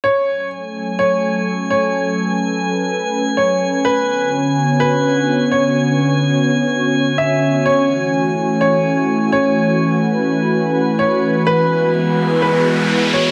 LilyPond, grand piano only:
\new Staff \with { instrumentName = "Grand piano" } { \time 4/4 \key fis \minor \tempo 4 = 126 cis''4 r4 cis''4. cis''8~ | cis''4 r2 cis''4 | b'4 r4 b'4. cis''8~ | cis''4 r2 e''4 |
cis''4 r4 cis''4. cis''8~ | cis''4 r2 cis''4 | b'4 r4 b'4. cis''8 | }